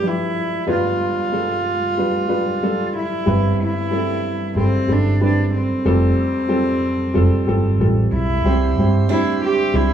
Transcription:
Already playing: felt piano G1 G2 G3 D4 F4 A4 B4 D5
0.02 felt piano F3 G3 D4 B4
0.08 cello E4
0.66 felt piano G1 G2 G3 D4 F4 B4
0.72 cello F4
1.32 felt piano G3 D4 F4 A4
1.97 felt piano G3 D4 F4 B4
2.28 felt piano G3 D4 F4 B4
2.63 felt piano G3 D4 F4 A4
2.97 cello E4
3.26 felt piano G1 G2 G3 C4 E4 B4, fingered electric bass G1
3.63 cello E4
3.91 felt piano G3 C4 E4 A4
4.56 fingered electric bass G1, felt piano G3 C4 E4 A4, cello C4
4.88 fingered electric bass G1, felt piano G3 C4 E4 A4
4.92 cello D4
5.21 felt piano G3 C4 E4 B4, cello D4
5.56 cello C4
5.85 fingered electric bass F1, felt piano F1 F2 G3 C4 F4 A4
6.48 felt piano G3 C4 F4 A4
7.14 fingered electric bass F1, felt piano G3 C4 F4 A4
7.47 fingered electric bass G1, felt piano G3 C4 F4 A4
7.79 fingered electric bass A1, felt piano G3 C4 F4 A4
8.12 fingered electric bass B1, cello E4
8.44 fingered electric bass C2, felt piano C2 C3 G3 C4 E4 C5, harmonium G4 C5 E5 C6
8.77 fingered electric bass G2, felt piano G3 C4 E4 C5
9.09 felt piano G3 C4 E4 C5, steel-string acoustic guitar D4, cello E4
9.44 cello G4
9.73 fingered electric bass C2, felt piano G3 C4 E4 C5, cello E4

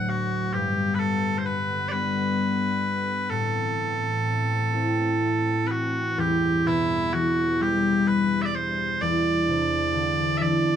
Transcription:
Already playing: ambient pad D2 A2 F#3, harp D2 F#3 A3 D4
0.09 bagpipes F#4
0.51 ambient pad G2 D3 B3, harp G2, bagpipes G4
0.95 bagpipes B4
0.99 bagpipes A4
1.38 bagpipes C5
1.45 bagpipes B4
1.88 harp G3 B3 D4, bagpipes B4 D5
3.29 ambient pad A2 E3 C4, harp A2, bagpipes A4
4.72 harp A3 C4 E4
5.67 bagpipes F#4 B4
6.15 harp E2, ambient pad G2 E3 G3, bagpipes G4
6.67 harp B2, bagpipes E4
7.13 harp E3, bagpipes F#4
7.60 harp G3, bagpipes G4
8.08 bagpipes B4
8.42 bagpipes D5 E5
8.55 bagpipes C5
8.99 ambient pad E2 C3 D4, harp E2, bagpipes D5
9.48 harp C3
9.94 harp D3
10.38 harp E3, bagpipes E5
10.42 bagpipes D5

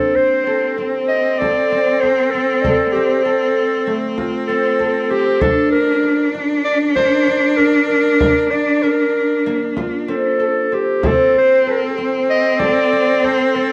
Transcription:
Already playing: harp A#3 C4 D4 G4, cello C4, clarinet A4
0.16 clarinet C5, frame drum
0.44 harp A4, celesta C5
0.78 harp C4
1.08 clarinet D#5
1.39 harp A4, clarinet D5, frame drum
1.72 harp C4
2.01 harp A4, clarinet C5, frame drum
2.31 harp C4, clarinet A4
2.62 harp A4, celesta D5, frame drum
2.92 harp C4, clarinet G4, frame drum
3.23 clarinet A4, harp A4
3.87 harp A3
4.18 harp F4, frame drum
4.47 harp C4, clarinet A4
4.79 harp A4, frame drum
5.02 clarinet A4
5.10 harp C4, clarinet G4
5.41 harp D4, cello D4, clarinet A4, frame drum
5.71 clarinet A#4, frame drum
6.03 harp A#4
6.35 harp D4
6.65 clarinet D5
6.96 harp A#4, clarinet C5, frame drum
7.27 harp D4
7.57 clarinet A#4, harp A#4, frame drum
7.87 harp D4, clarinet A#4
8.20 harp A#4, frame drum
8.51 harp D4, clarinet D5
8.83 clarinet A#4, harp A#4
9.46 harp A#3
9.77 harp F4, frame drum
10.08 harp C4, clarinet A4
10.40 harp A4
10.72 harp C4, clarinet G4
11.02 cello C4, harp C4, frame drum
11.06 clarinet A4
11.35 clarinet C5, frame drum
11.67 harp A4
11.98 harp C4
12.30 clarinet D#5
12.60 harp A4, clarinet D5, frame drum
12.92 harp C4
13.24 harp A4, clarinet C5, frame drum
13.55 harp C4, clarinet A4

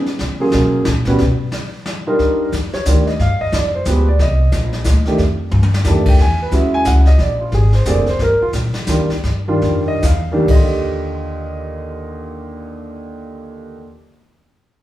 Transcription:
0.06 snare
0.19 upright bass C#3, brush sweep, snare
0.40 upright piano F#3 A#3 C#4 F4 G#4
0.52 upright bass B2, snare
0.85 upright bass A#2, snare
1.05 upright bass A#2, upright piano G3 B3 C#4 F#4 B4, snare
1.18 upright bass B2, brush sweep, snare
1.52 snare
1.86 snare
2.07 upright piano G3 D4 D#4 F4 A#4
2.19 upright bass D#2, brush sweep, kick, snare
2.52 upright bass F2, kick, snare, hi-hat pedal
2.73 upright piano C#5, muted upright bass stroke, snare
2.85 upright bass D2, upright piano D#3 G3 D4 F4 D5, kick, snare, hi-hat pedal
3.07 upright piano D#5, snare
3.19 upright bass G2, upright piano F5, brush sweep, kick, snare
3.40 upright piano D#5, muted upright bass stroke
3.52 upright bass F2, upright piano D5, kick, snare, hi-hat pedal
3.75 upright piano C5
3.85 upright bass D2, upright piano F3 G#3 B3 G4 B4, kick, snare, hi-hat pedal
4.08 upright piano D5
4.19 upright bass C2, upright piano D#5, brush sweep, kick, snare
4.52 upright bass A#1, kick, snare, hi-hat pedal
4.73 snare
4.84 upright bass D2, kick, snare, hi-hat pedal
5.06 upright piano D#3 A3 D4 G4, muted upright bass stroke, snare
5.18 upright bass F2, brush sweep, kick, snare
5.51 upright bass G2, high tom
5.63 high tom
5.74 snare
5.84 upright bass F2, upright piano D#3 A3 D4 G4 A5, snare, hi-hat pedal
6.06 upright piano G5, kick, crash
6.19 upright bass E2, upright piano G#5, brush sweep, kick, snare
6.42 upright piano B4
6.51 upright bass D#2, upright piano G#3 C#4 E4 F#4 E5, kick, snare, hi-hat pedal
6.74 upright piano G#5
6.85 upright bass C#2, upright piano F#5, kick, snare, hi-hat pedal
7.06 upright piano D#5, snare
7.19 upright bass A#1, upright piano D5, brush sweep, kick, snare
7.41 upright piano F4
7.52 upright bass G#1, upright piano G#4, kick, snare
7.73 upright piano C5, snare
7.85 upright bass F1, upright piano D3 A#3 C4 G#4 D5, kick, snare, hi-hat pedal
8.06 upright piano C5, muted upright bass stroke, snare
8.19 upright bass G1, upright piano A#4, brush sweep, kick, snare
8.41 upright piano F4, muted upright bass stroke
8.53 upright bass A#1, kick, snare, hi-hat pedal
8.74 muted upright bass stroke, snare
8.87 upright bass D#2, upright piano D#3 G3 D4 F4, kick, snare, hi-hat pedal
9.10 muted upright bass stroke, snare
9.24 upright bass G2, brush sweep, kick, snare
9.48 upright piano D#3 G3 D4 F4
9.62 upright bass F2, kick, snare
9.88 upright piano D#5
10.02 upright bass E2, upright piano F5, kick, snare, hi-hat pedal
10.32 upright piano D#3 G3 D4 G4
10.37 upright piano D#2
10.46 upright bass D#2, upright piano D3, kick, crash
10.50 upright piano F4 D#5
10.62 upright piano G4

